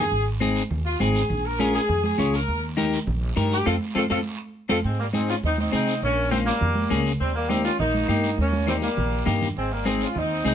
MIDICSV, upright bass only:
0, 0, Header, 1, 2, 480
1, 0, Start_track
1, 0, Tempo, 295130
1, 194, Time_signature, 4, 2, 24, 8
1, 17150, End_track
2, 0, Start_track
2, 0, Title_t, "Upright bass"
2, 0, Program_c, 0, 32
2, 0, Note_on_c, 0, 43, 88
2, 167, Note_off_c, 0, 43, 0
2, 186, Note_on_c, 0, 32, 84
2, 956, Note_off_c, 0, 32, 0
2, 1141, Note_on_c, 0, 39, 88
2, 1530, Note_off_c, 0, 39, 0
2, 1623, Note_on_c, 0, 32, 84
2, 2011, Note_off_c, 0, 32, 0
2, 2110, Note_on_c, 0, 34, 87
2, 2879, Note_off_c, 0, 34, 0
2, 3070, Note_on_c, 0, 41, 96
2, 3455, Note_off_c, 0, 41, 0
2, 3545, Note_on_c, 0, 37, 90
2, 3932, Note_off_c, 0, 37, 0
2, 4033, Note_on_c, 0, 39, 97
2, 4800, Note_off_c, 0, 39, 0
2, 4988, Note_on_c, 0, 34, 94
2, 5373, Note_off_c, 0, 34, 0
2, 5472, Note_on_c, 0, 43, 94
2, 5856, Note_off_c, 0, 43, 0
2, 5954, Note_on_c, 0, 41, 98
2, 6132, Note_off_c, 0, 41, 0
2, 6432, Note_on_c, 0, 41, 95
2, 6610, Note_off_c, 0, 41, 0
2, 6673, Note_on_c, 0, 41, 93
2, 6851, Note_off_c, 0, 41, 0
2, 7626, Note_on_c, 0, 41, 102
2, 7807, Note_off_c, 0, 41, 0
2, 7876, Note_on_c, 0, 44, 84
2, 8642, Note_off_c, 0, 44, 0
2, 8836, Note_on_c, 0, 39, 83
2, 9218, Note_off_c, 0, 39, 0
2, 9312, Note_on_c, 0, 48, 81
2, 9696, Note_off_c, 0, 48, 0
2, 9789, Note_on_c, 0, 34, 88
2, 10558, Note_off_c, 0, 34, 0
2, 10756, Note_on_c, 0, 41, 87
2, 11139, Note_off_c, 0, 41, 0
2, 11229, Note_on_c, 0, 37, 93
2, 11615, Note_off_c, 0, 37, 0
2, 11712, Note_on_c, 0, 39, 86
2, 12481, Note_off_c, 0, 39, 0
2, 12667, Note_on_c, 0, 34, 93
2, 13054, Note_off_c, 0, 34, 0
2, 13147, Note_on_c, 0, 43, 84
2, 13534, Note_off_c, 0, 43, 0
2, 13627, Note_on_c, 0, 39, 85
2, 14398, Note_off_c, 0, 39, 0
2, 14590, Note_on_c, 0, 34, 89
2, 14976, Note_off_c, 0, 34, 0
2, 15072, Note_on_c, 0, 43, 83
2, 15457, Note_off_c, 0, 43, 0
2, 15546, Note_on_c, 0, 32, 83
2, 16318, Note_off_c, 0, 32, 0
2, 16512, Note_on_c, 0, 39, 89
2, 16898, Note_off_c, 0, 39, 0
2, 16989, Note_on_c, 0, 36, 88
2, 17150, Note_off_c, 0, 36, 0
2, 17150, End_track
0, 0, End_of_file